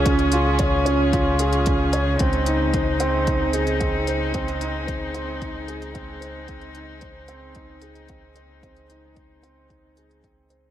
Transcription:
<<
  \new Staff \with { instrumentName = "Grand piano" } { \time 4/4 \key aes \mixolydian \tempo 4 = 112 des'8 f'8 des''8 des'8 f'8 aes'8 des'8 des''8 | c'8 ees'8 c''8 c'8 r8 aes'8 c'8 c''8 | c'8 ees'8 c''8 c'8 ees'8 aes'8 c'8 c''8 | c'8 ees'8 c''8 c'8 ees'8 aes'8 c'8 c''8 |
c'8 ees'8 c''8 c'8 ees'8 aes'8 c'8 c''8 | }
  \new Staff \with { instrumentName = "String quartet" } { \time 4/4 \key aes \mixolydian << { <des' f' aes'>1 | <aes c' ees'>1~ | <aes c' ees'>1~ | <aes c' ees'>1~ |
<aes c' ees'>1 | } \\ { des1~ | des1~ | des1~ | des1~ |
des1 | } >> }
  \new Staff \with { instrumentName = "Analog synth bass" } { \clef bass \time 4/4 \key aes \mixolydian des,1 | des,1~ | des,1~ | des,1~ |
des,1 | }
  \new DrumStaff \with { instrumentName = "Drums" } \drummode { \time 4/4 <hh bd>16 hh16 hh8 <hh bd>8 hh8 <hh bd>8 hh16 hh16 <hh bd>8 hh8 | <hh bd>16 hh16 hh8 <hh bd>8 hh8 <hh bd>8 hh16 hh16 <hh bd>8 hh8 | <hh bd>16 hh16 hh8 <hh bd>8 hh8 <hh bd>8 hh16 hh16 <hh bd>8 hh8 | <hh bd>16 hh16 hh8 <hh bd>8 hh8 <hh bd>8 hh16 hh16 <hh bd>8 hh8 |
<hh bd>16 hh16 hh8 <hh bd>8 hh8 <hh bd>8 hh16 hh16 <hh bd>8 hh8 | }
>>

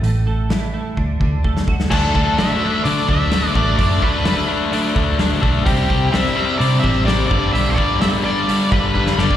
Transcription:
<<
  \new Staff \with { instrumentName = "Lead electric guitar" } { \time 4/4 \key d \major \tempo 4 = 128 r1 | \key d \mixolydian a'4 e''4 d''8 e''4 d''8 | d''8 b'4 r2 r8 | g'4 e''4 d''8 e''8 d''8 d''8 |
e''16. c''32 d''8 e''8 d''4 b'4 d''8 | }
  \new Staff \with { instrumentName = "Clean electric guitar" } { \time 4/4 \key d \major a,8 a8 e8 a8 d8 d8 a8 fis'8 | \key d \mixolydian <d fis a d'>8 <fis a d'>8 <d fis a d'>8 <fis a d'>8 <d fis a d'>4 <d fis a d'>8 <fis a d'>8 | <d fis a d'>8 <fis a d'>8 <d fis a d'>8 <fis a d'>8 <d fis a d'>4 <d fis a d'>8 <fis a d'>8 | <c g c' d'>8 <g c' d'>8 <c g c' d'>8 <g c' d'>8 <c g c' d'>4 <c g c' d'>8 <g, d g b d'>8 |
<g, d g b d'>8 <g b d'>8 <d g b d'>8 <g b d'>8 <g, d g b d'>4 <d g b d'>8 <g b d'>8 | }
  \new Staff \with { instrumentName = "Overdriven electric guitar" } { \clef bass \time 4/4 \key d \major r1 | \key d \mixolydian <d a d'>8 <d a d'>8 <d a d'>8 <d a d'>8 <d a d'>8 <d a d'>8 <d a d'>8 <d a d'>8 | <d a d'>8 <d a d'>8 <d a d'>8 <d a d'>8 <d a d'>8 <d a d'>8 <d a d'>8 <d a d'>8 | <c g c'>8 <c g c'>8 <c g c'>8 <c g c'>8 <c g c'>8 <c g c'>8 <c g c'>8 <g, d g>8 |
<g, d g>8 <g, d g>8 <g, d g>8 <g, d g>8 <g, d g>8 <g, d g>8 <g, d g>8 <g, d g>8 | }
  \new Staff \with { instrumentName = "Picked electric bass" } { \clef bass \time 4/4 \key d \major a,,2 d,8 d,4 d,8 | \key d \mixolydian d,8 d,8 r4 d8 d,4 a,,8 | fis,8 d,2 d,4 b,,8 | c,8 c,8 r4 c8 a,,4 g,,8 |
b,,8 g,,2 g,,4 fis,,8 | }
  \new DrumStaff \with { instrumentName = "Drums" } \drummode { \time 4/4 hho4 <hho sn>4 bd8 bd8 bd16 sn16 bd16 sn16 | <cymc bd>8 bd8 <hho sn>4 hho8 bd8 <hho sn>8 bd8 | <hho bd>8 bd8 <hho sn>4 hho8 bd8 <hho sn>8 bd8 | <hho bd>8 bd8 <hho sn>16 sn8. hho8 bd8 <hho sn>8 bd8 |
hho8 bd8 <hho sn>4 hho8 bd8 bd16 sn16 sn16 bd16 | }
>>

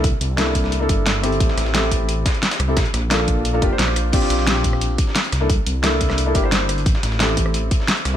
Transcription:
<<
  \new Staff \with { instrumentName = "Felt piano" } { \time 4/4 \key c \mixolydian \tempo 4 = 176 r4 <bes d' e' a'>4~ <bes d' e' a'>16 <bes d' e' a'>4~ <bes d' e' a'>16 <c' e' g' a'>8~ | <c' e' g' a'>4 <c' e' g' a'>2~ <c' e' g' a'>8. <c' e' g' a'>16 | r4 <bes d' f' a'>4~ <bes d' f' a'>16 <bes d' f' a'>16 <bes d' f' g'>16 <bes d' f' c''>4~ <bes d' f' c''>16 | <c' d' f' g'>4 <c' d' f' g'>2~ <c' d' f' g'>8 r16 <bes d' e' a'>16 |
r4 <bes d' e' a'>4~ <bes d' e' a'>16 <bes d' e' a'>16 <bes d' e' g'>16 <bes d' e' c''>4~ <bes d' e' c''>16 | r4 <c' e' g' a'>2~ <c' e' g' a'>8. <c' e'>16 | }
  \new Staff \with { instrumentName = "Detuned saw bass" } { \clef bass \time 4/4 \key c \mixolydian c,8 c,2 g,,4. | a,,8 a,,2 r4 c,8 | bes,,8 bes,,2 f,,8 bes,,4 | bes,,8 bes,,2 r4 c,8 |
c,8 c,2 g,,4. | a,,8 a,,2 r4 c,8 | }
  \new DrumStaff \with { instrumentName = "Drums" } \drummode { \time 4/4 <hh bd>8 hh8 <hh sn>16 <ss sn>16 <hh bd>16 sn16 hh8 <hh bd>8 <hh sn>8 <hh ss>16 hh16 | <hh bd>16 sn16 <hh ss sn>16 sn16 <hh sn>16 sn16 <hh bd>8 hh8 <hh bd sn>16 hh16 <hh sn>16 <hh sn>16 <hh ss>8 | <hh bd sn>16 hh16 <hh ss sn>8 <hh sn>16 <ss sn>16 <hh bd>8 hh8 <hh bd>8 <hh sn>16 <ss sn>16 <hh ss>8 | <cymc hh bd>16 sn16 <hh sn>16 sn16 <hh sn>16 sn16 <hh bd>16 ss16 hh8 <hh bd>16 sn16 <hh sn>16 hh16 <hh ss sn>8 |
<hh bd>8 hh8 <hh sn>16 sn16 <hh bd>16 <ss sn>16 hh8 <hh bd>16 ss16 <hh sn>8 <hh ss>16 hh16 | <hh bd>16 sn16 <hh sn>16 sn16 <hh sn>16 sn16 <hh bd>16 ss16 hh8 <hh bd>16 sn16 <hh sn>16 hh16 <hh ss sn>8 | }
>>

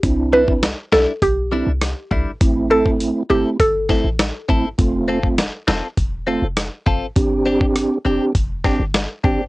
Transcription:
<<
  \new Staff \with { instrumentName = "Synth pluck" } { \time 4/4 \key c \major \tempo 4 = 101 r8 b'16 r8. a'16 r16 g'8. r4 r16 | r8 a'16 r8. g'16 r16 a'8. r4 r16 | r1 | r1 | }
  \new Staff \with { instrumentName = "Clean electric guitar" } { \time 4/4 \key c \major r8 <g d' e'>8 r8 <g d' e'>8 r8 <g d' e'>8 r8 <g d' e'>8 | r8 <c' e' a'>8 r8 <c' e' a'>8 r8 <c' e' a'>8 r8 <c' e' a'>8 | r8 <c' f' a'>8 r8 <c' f' a'>8 r8 <c' f' a'>8 r8 <c' f' a'>8 | r8 <c' d' g'>8 r8 <c' d' g'>8 r8 <c' d' g'>8 r8 <c' d' g'>8 | }
  \new Staff \with { instrumentName = "Tonewheel organ" } { \time 4/4 \key c \major <c' d' e'>8. <c' d' e'>16 r4. <c' d' e'>16 r4 r16 | <a c' e'>4. <a c' e'>8 r8 <a c' e'>16 r8. <a c' e'>16 r16 | <a c' f'>8. <a c' f'>16 r4. <a c' f'>16 r4 r16 | <c' d' g'>4. <c' d' g'>8 r8 <c' d' g'>16 r8. <c' d' g'>16 r16 | }
  \new Staff \with { instrumentName = "808-style bass" } { \clef bass \time 4/4 \key c \major c,4~ c,16 r16 b,,16 r16 b,,8. c,8 r16 c,16 r16 | a,,4~ a,,16 r16 g,,16 r16 g,,8. a,,8 r16 a,,16 r16 | f,,4~ f,,16 r16 e,,16 r16 e,,8. f,,8 r16 f,,16 r16 | g,,4~ g,,16 r16 f,,16 r16 f,,8. g,,8 r16 g,,16 r16 | }
  \new DrumStaff \with { instrumentName = "Drums" } \drummode { \time 4/4 <hh bd>8. bd16 <hh ss sn>8 sn8 <hh bd>4 <hh ss sn>8 bd8 | <hh bd>8. bd16 hh4 <hh bd>8 <bd sn>8 <hh ss sn>8 bd8 | <hh bd>8. bd16 <hh ss sn>8 sn8 <hh bd>4 <hh ss sn>8 bd8 | <hh bd>8. bd16 <hh ss>4 <hh bd>8 <bd sn>8 <hh ss sn>8 bd8 | }
>>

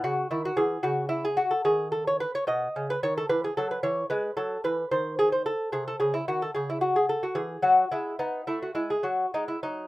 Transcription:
<<
  \new Staff \with { instrumentName = "Lute" } { \time 12/8 \key cis \minor \tempo 4. = 73 fis'8 e'16 fis'16 gis'8 fis'8 e'16 gis'16 fis'16 a'16 gis'8 a'16 cis''16 b'16 cis''16 dis''8. b'16 cis''16 a'16 | b'16 gis'16 a'16 b'16 cis''8 b'8 a'8 b'8 c''8 gis'16 c''16 a'8 gis'16 a'16 gis'16 e'16 ges'16 a'16 | gis'16 e'16 fis'16 gis'16 a'16 fis'16 gis'8 fis'8 e'8 dis'8 e'16 fis'16 e'16 gis'16 fis'8 dis'16 e'16 dis'8 | }
  \new Staff \with { instrumentName = "Lute" } { \clef bass \time 12/8 \key cis \minor cis8 dis8 e8 cis4. dis4. b,8 cis8 dis8 | e8 fis8 e8 gis8 fis8 e8 ees4. c8 cis8 ees8 | cis4. e8 fis8 gis8 b8 a8 gis8 fis8 gis8 fis8 | }
>>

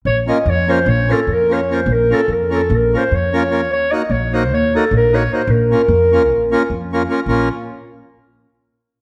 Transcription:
<<
  \new Staff \with { instrumentName = "Clarinet" } { \time 9/8 \key bes \minor \tempo 4. = 100 des''8 ees''8 des''8 c''8 des''8 a'8 bes'8 des''8 c''8 | bes'8 a'8 bes'8 a'8 bes'8 c''8 des''4. | des''8 ees''8 des''8 c''8 des''8 a'8 bes'8 des''8 c''8 | bes'2.~ bes'8 r4 |
r1 r8 | }
  \new Staff \with { instrumentName = "Accordion" } { \time 9/8 \key bes \minor r8 <bes des' f' bes'>8 r8 <bes des' f' bes'>8 r8 <bes des' f' bes'>8 r8 <bes des' f' bes'>8 <bes des' f' bes'>8 | r8 <bes des' f' bes'>8 r8 <bes des' f' bes'>8 r8 <bes des' f' bes'>8 r8 <bes des' f' bes'>8 <bes des' f' bes'>8 | r8 <bes ees' ges' bes'>8 r8 <bes ees' ges' bes'>8 r8 <bes ees' ges' bes'>8 r8 <bes ees' ges' bes'>8 <bes ees' ges' bes'>8 | r8 <bes des' f' bes'>8 r8 <bes des' f' bes'>8 r8 <bes des' f' bes'>8 r8 <bes des' f' bes'>8 <bes des' f' bes'>8 |
<bes des' f' bes'>8 r1 | }
  \new Staff \with { instrumentName = "Upright bass" } { \clef bass \time 9/8 \key bes \minor bes,,4 f,4 bes,,4 f,4. | bes,,4 f,4 bes,,4 f,4. | ees,4 bes,,4 ees,4 bes,,4. | bes,,4 f,4 bes,,4 f,4. |
bes,,8 r1 | }
>>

